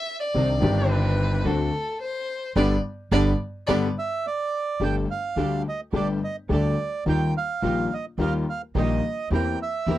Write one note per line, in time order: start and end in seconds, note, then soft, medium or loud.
0.00 0.20 E5 medium
0.20 0.91 D5 medium
0.34 0.58 C2 medium
0.34 0.58 C3 medium
0.34 0.58 D#3 soft
0.34 0.58 C4 soft
0.34 0.58 D4 soft
0.34 0.58 D#4 soft
0.34 0.58 G4 soft
0.34 0.58 C5 medium
0.60 1.41 G1 medium
0.60 1.41 G2 medium
0.60 1.40 D#3 medium
0.60 1.41 C4 medium
0.60 1.42 C4 medium
0.60 1.42 D4 medium
0.60 1.42 G4 medium
0.90 1.48 B4 medium
1.45 1.68 D2 medium
1.45 1.69 D2 medium
1.45 1.69 D3 medium
1.45 1.69 A3 soft
1.45 1.69 C4 soft
1.45 1.69 D4 soft
1.45 1.69 F#4 medium
1.45 1.69 F#4 soft
1.45 2.01 A4 medium
1.45 1.69 C5 soft
2.02 2.53 C5 medium
2.56 2.77 G1 medium
2.56 2.74 D3 medium
2.56 2.74 G3 medium
2.56 2.74 B3 medium
2.56 2.74 D4 medium
2.56 2.74 G4 medium
2.56 2.74 B4 medium
2.56 2.74 D5 medium
3.11 3.33 G1 medium
3.11 3.30 D3 medium
3.11 3.30 G3 medium
3.11 3.30 B3 medium
3.11 3.30 D4 loud
3.11 3.30 G4 medium
3.11 3.30 B4 medium
3.11 3.30 D5 medium
3.67 3.89 G1 medium
3.67 3.86 D3 medium
3.67 3.86 G3 medium
3.67 3.87 B3 medium
3.67 3.86 D4 medium
3.67 3.86 G4 medium
3.67 3.86 B4 medium
3.67 3.85 D5 medium
3.99 4.26 E5 medium
4.27 4.84 D5 medium
4.80 5.04 G1 medium
4.80 5.05 G1 medium
4.80 5.04 G2 medium
4.80 5.04 D3 soft
4.80 5.05 G3 soft
4.80 5.05 A3 soft
4.80 5.05 D4 medium
4.80 5.05 G4 soft
4.80 5.05 G4 medium
4.80 5.05 A4 medium
4.80 4.96 G5 medium
5.11 5.62 F5 medium
5.36 5.60 D2 medium
5.36 5.61 D2 medium
5.36 5.61 D3 medium
5.36 5.61 G3 soft
5.36 5.61 A3 soft
5.36 5.61 D4 medium
5.36 5.61 G4 medium
5.36 5.61 A4 medium
5.69 5.81 D#5 medium
5.93 6.17 G1 medium
5.93 6.17 G2 medium
5.93 6.17 D3 medium
5.93 6.17 G3 medium
5.93 6.17 A3 soft
5.93 6.17 D4 medium
5.93 6.17 G4 medium
5.93 6.18 A4 medium
5.93 6.08 D5 medium
6.24 6.36 D#5 medium
6.49 6.73 D2 medium
6.49 6.74 D3 medium
6.49 6.73 G3 medium
6.49 6.74 A3 soft
6.49 6.74 D4 medium
6.49 6.74 G4 medium
6.49 6.74 A4 medium
6.53 7.04 D5 medium
7.06 7.30 D#2 medium
7.06 7.30 D#3 medium
7.06 7.30 G3 soft
7.06 7.30 A#3 soft
7.06 7.30 D#4 medium
7.06 7.30 F4 medium
7.06 7.31 F4 soft
7.06 7.31 G4 medium
7.06 7.34 G5 medium
7.37 7.94 F5 medium
7.62 7.86 A#1 medium
7.62 7.86 A#2 medium
7.62 7.86 D#3 medium
7.62 7.86 G3 soft
7.62 7.86 A#3 soft
7.62 7.86 D#4 medium
7.62 7.86 F4 medium
7.62 7.87 F4 medium
7.62 7.86 G4 medium
7.93 8.05 D#5 medium
8.18 8.42 D#2 medium
8.18 8.43 D#2 medium
8.18 8.43 D#3 medium
8.18 8.43 G3 medium
8.18 8.43 A#3 medium
8.18 8.43 D#4 medium
8.18 8.43 F4 medium
8.18 8.43 F4 soft
8.18 8.43 G4 medium
8.18 8.33 F5 medium
8.50 8.62 F5 medium
8.75 8.99 A#1 medium
8.75 8.99 A#2 medium
8.75 8.99 D#3 medium
8.75 8.99 G3 medium
8.75 8.99 A#3 medium
8.75 8.99 D#4 medium
8.75 8.99 F4 medium
8.75 8.99 G4 medium
8.75 9.29 D#5 medium
9.30 9.55 E2 medium
9.30 9.55 E3 medium
9.30 9.55 A#3 soft
9.30 9.55 C4 medium
9.30 9.55 C4 soft
9.30 9.55 E4 medium
9.30 9.55 G4 medium
9.30 9.55 A#4 medium
9.30 9.59 G5 medium
9.63 9.98 E5 medium
9.87 9.98 E2 medium
9.87 9.98 E3 medium
9.87 9.98 A#3 medium
9.87 9.98 C4 medium
9.87 9.98 C4 soft
9.87 9.98 E4 medium
9.87 9.98 G4 medium
9.87 9.98 A#4 medium